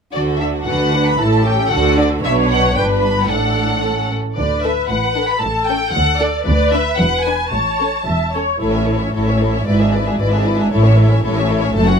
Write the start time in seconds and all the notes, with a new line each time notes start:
0.14 D2 D3 F#4 A4 D5
0.40 D4 F#4 E5
0.67 D2 D3 F#4 A4 B4 F#5
0.94 D4 F#4
1.07 B5
1.20 A1 A2 E4 A4 A5
1.46 C#4 G4 G5
1.71 D2 D3 F#4 A4 F#5
1.98 D4 F#4 D5
2.24 B1 B2 D4 B4 C#5 E5
2.51 F#5
2.76 G1 G2 D4 B4 G5
3.02 B5
3.30 A1 A2 D4 A4 F#5
3.84 C#4 A4
4.36 D2 D3 B4 D5
4.63 D4 A4 E5
4.90 A1 A2 F#5
5.16 D4 A4
5.29 B5
5.41 A1 A2 A4 A5
5.67 C#4 A4 G5
5.94 D2 A4 F#5
6.20 D4 A4 D5
6.46 D2 B4 D5
6.72 D4 B4 E5
6.98 E1 E2 B4 F#5
7.24 D4 B4 G#5
7.51 A1 A2 C#5 A5
7.80 C#4 A4
8.07 E1 E2 E5
8.34 C#4 A4 C#5
8.60 A1 A2 E4 A4 C#5
8.73 C#4 C#5 E5
8.87 E4 A4 C#5
9.00 C#4 C#5 E5
9.12 A1 A2 E4 A4 C#5
9.26 C#4 C#5 E5
9.39 E4 A4 C#5
9.53 C#4 C#5 E5
9.65 G#1 G#2 E4 B4 D5
9.78 D4 G#4 E5
9.92 E4 B4 D5
10.05 D4 G#4 E5
10.18 G#1 G#2 E4 B4 D5
10.32 D4 G#4 E5
10.45 E4 B4 D5
10.58 D4 G#4 E5
10.71 A1 A2 E4 A4 C#5
10.84 C#4 C#5 E5
10.97 E4 A4 C#5
11.10 C#4 C#5 E5
11.23 A1 A2 E4 A4 C#5
11.36 C#4 C#5 E5
11.48 E4 A4 C#5
11.61 C#4 C#5 E5
11.75 F#1 F#2 A3 A4 A5
11.88 C#4 F#4 F#5